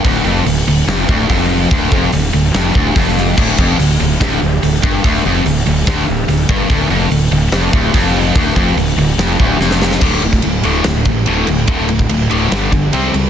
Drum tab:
CC |----------------|----------------|x---------------|----------------|
RD |----------------|----------------|----------------|----------------|
HH |o---o---o---o---|o---o---o---o---|----o---o---o---|o---o---o---o---|
SD |--------o-------|--------o-----o-|--------o-------|--------o-------|
BD |o---------o-o---|o-o-------o-o---|o-o-----o-----o-|o-------o-----o-|

CC |----------------|----------------|x---------------|----------------|
RD |----------------|----------------|--x-x-x-x-x-x-x-|x-x-x-x-x-x-x-x-|
HH |o---o---o---o---|o---o-----------|----------------|----------------|
SD |--------o-------|--------o---oooo|---o----o-------|--------o-------|
BD |o---------o-o---|o-o-------o-----|o--o------o-----|o--o------o-----|